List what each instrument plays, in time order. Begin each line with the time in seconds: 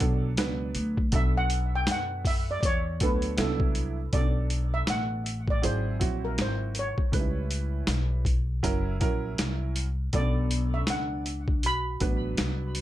Already playing: steel pan D5
0.00 upright bass B1, upright piano F#3 B3 D4 A4, kick, closed hi-hat
0.37 upright bass C#2, upright piano F#3 B3 D4 B4, snare, closed hi-hat
0.75 upright bass D2, closed hi-hat
0.97 kick
1.12 upright bass B1, upright piano F#3 B3 D4 A4, steel pan E5, kick, closed hi-hat
1.37 steel pan F#5
1.50 closed hi-hat
1.75 steel pan G5
1.87 upright bass F#2, snare, closed hi-hat
1.91 steel pan F#5
2.25 steel pan E5, kick, open hi-hat
2.51 steel pan D5
2.61 upright bass E2, steel pan D5, kick, closed hi-hat
2.65 steel pan C#5
3.00 upright bass D2, upright piano F#3 B3 D4 A4, steel pan B4, kick, closed hi-hat
3.22 closed hi-hat
3.37 upright bass C2, upright piano F#3 B3 C#4 E4, steel pan A4, snare, closed hi-hat
3.44 upright piano D4
3.60 kick
3.75 closed hi-hat
4.13 upright bass B1, upright piano F#3 B3 C#4 A4, steel pan D5, kick, closed hi-hat
4.20 upright piano D4
4.50 closed hi-hat
4.74 steel pan E5
4.87 upright bass A1, steel pan F#5, snare, closed hi-hat
5.26 closed hi-hat
5.48 steel pan D5, kick
5.62 upright bass G#1, upright piano F#3 C4 E4 G#4, steel pan C5, closed hi-hat
5.99 upright bass A#1, upright piano F#3 C4 E4 F#4, kick, closed hi-hat
6.25 steel pan A#4
6.38 upright bass G#1, steel pan C5, snare, closed hi-hat
6.75 closed hi-hat
6.79 steel pan C#5
6.98 muted upright bass stroke, kick
7.12 upright bass C#2, upright piano G3 C#4 D#4 B4, kick, closed hi-hat
7.19 upright piano E4
7.51 closed hi-hat
7.87 upright bass B1, snare, closed hi-hat
8.25 kick, closed hi-hat
8.63 upright bass F#1, upright piano F#3 C#4 E4 A#4, kick, closed hi-hat
9.00 upright bass A#1, upright piano F#3 C#4 E4 A#4, kick, closed hi-hat
9.38 upright bass C2, snare, closed hi-hat
9.76 closed hi-hat
10.13 upright bass B1, upright piano F#3 B3 C#4 A4, vibraphone B3, steel pan D5, kick, closed hi-hat
10.21 upright piano D4
10.51 closed hi-hat
10.74 vibraphone C#4, steel pan E5
10.87 upright bass C#2, vibraphone D4, steel pan F#5, snare, closed hi-hat
11.26 closed hi-hat
11.48 kick
11.63 upright bass B1, vibraphone F#4, steel pan B5, closed hi-hat
12.00 upright bass A1, upright piano F#3 B3 D4 B4, kick, closed hi-hat
12.37 upright bass C2, snare, closed hi-hat
12.75 closed hi-hat